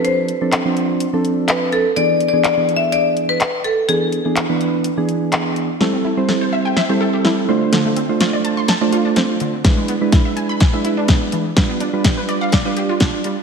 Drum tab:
HH |xxxxxxxx|xxxxxxxx|xxxxxxxx|--------|
CP |--x---x-|--x---x-|--x---x-|--------|
SD |--------|--------|--------|o-o-o-o-|
BD |--------|--------|--------|--------|

HH |xxxxxxxx|xxxxxxxx|xxxxxxxx|
CP |--------|--------|--------|
SD |o-o-o-o-|o-o-o-o-|o-o-o-o-|
BD |--------|o-o-o-o-|o-o-o-o-|